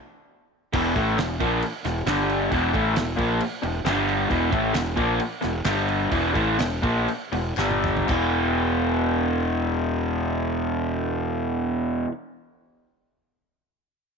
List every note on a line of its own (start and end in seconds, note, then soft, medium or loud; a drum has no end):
0.73 0.94 E1 loud
0.73 0.95 E2 loud
0.73 0.95 B2 medium
0.73 0.95 E3 loud
0.73 kick loud
0.73 crash loud
0.73 crash medium
0.95 1.16 A1 loud
0.95 1.17 A2 medium
0.95 1.17 E3 loud
0.95 1.17 A3 medium
0.95 kick loud
0.95 crash medium
1.18 1.39 E1 medium
1.18 1.36 E2 medium
1.18 1.36 B2 medium
1.18 snare loud
1.18 crash medium
1.40 1.61 A#1 medium
1.40 1.62 A#2 loud
1.40 1.62 F3 loud
1.40 1.62 A#3 loud
1.40 kick loud
1.40 crash medium
1.62 crash medium
1.85 2.05 E1 medium
1.85 2.03 E2 medium
1.85 2.03 B2 medium
1.85 snare soft
1.85 crash medium
2.06 2.48 G1 loud
2.06 2.51 G2 medium
2.06 2.51 D3 medium
2.06 2.51 G3 medium
2.06 snare loud
2.06 crash medium
2.29 crash medium
2.52 2.72 E1 medium
2.52 2.73 E2 loud
2.52 2.73 B2 loud
2.52 2.72 E3 loud
2.52 kick loud
2.52 crash medium
2.73 2.95 A1 loud
2.73 2.95 A2 medium
2.73 2.95 E3 medium
2.73 2.95 A3 medium
2.73 kick medium
2.73 crash medium
2.94 3.17 E1 medium
2.94 3.13 E2 medium
2.94 3.14 B2 medium
2.94 snare loud
2.94 crash medium
3.16 3.39 A#1 loud
3.16 3.39 A#2 medium
3.16 3.39 F3 loud
3.16 3.39 A#3 loud
3.16 kick loud
3.16 crash medium
3.41 crash medium
3.62 3.84 E1 medium
3.62 3.80 E2 medium
3.62 3.80 B2 medium
3.62 crash medium
3.84 4.26 G1 loud
3.84 4.29 G2 medium
3.84 4.29 D3 loud
3.84 4.29 G3 medium
3.84 snare loud
3.84 crash medium
4.09 crash medium
4.29 4.51 E1 medium
4.29 4.51 E2 loud
4.29 4.51 B2 loud
4.29 4.50 E3 loud
4.29 kick medium
4.29 crash medium
4.51 4.73 A1 loud
4.51 4.73 A2 loud
4.51 4.73 E3 medium
4.51 4.74 A3 loud
4.51 kick loud
4.51 crash medium
4.74 4.96 E1 medium
4.74 4.92 E2 medium
4.74 4.92 B2 medium
4.74 snare loud
4.74 clap medium
4.74 crash medium
4.96 5.18 A#1 medium
4.96 5.18 A#2 loud
4.96 5.19 F3 medium
4.96 5.19 A#3 loud
4.96 kick loud
4.96 crash medium
5.20 crash medium
5.41 5.64 E1 medium
5.41 5.60 E2 medium
5.41 5.60 B2 medium
5.41 snare soft
5.41 crash medium
5.64 6.08 G1 loud
5.64 6.10 G2 medium
5.64 6.10 D3 loud
5.64 6.11 G3 medium
5.64 snare loud
5.64 clap medium
5.64 crash medium
5.89 crash medium
6.11 6.33 E1 medium
6.11 6.34 E2 loud
6.11 6.33 B2 loud
6.11 6.33 E3 loud
6.11 kick medium
6.11 crash medium
6.34 6.57 A1 medium
6.34 6.57 A2 medium
6.34 6.58 E3 medium
6.34 6.58 A3 medium
6.34 kick medium
6.34 crash medium
6.59 6.82 E1 medium
6.59 6.78 E2 medium
6.59 6.78 B2 medium
6.59 snare loud
6.59 clap medium
6.59 crash medium
6.82 7.06 A#1 medium
6.82 7.06 A#2 medium
6.82 7.07 F3 loud
6.82 7.07 A#3 loud
6.82 kick loud
6.82 crash medium
7.08 crash medium
7.32 7.55 E1 medium
7.32 7.52 E2 medium
7.32 7.52 B2 medium
7.32 crash medium
7.57 8.05 G1 medium
7.57 8.07 G2 medium
7.57 8.08 D3 medium
7.57 8.08 G3 loud
7.57 snare medium
7.57 clap loud
7.71 high tom medium
7.84 mid tom loud
7.97 floor tom loud
8.07 12.05 E1 medium
8.07 12.07 E2 medium
8.07 12.09 B2 loud
8.07 12.11 E3 loud
8.07 kick loud
8.07 clap medium
8.07 crash medium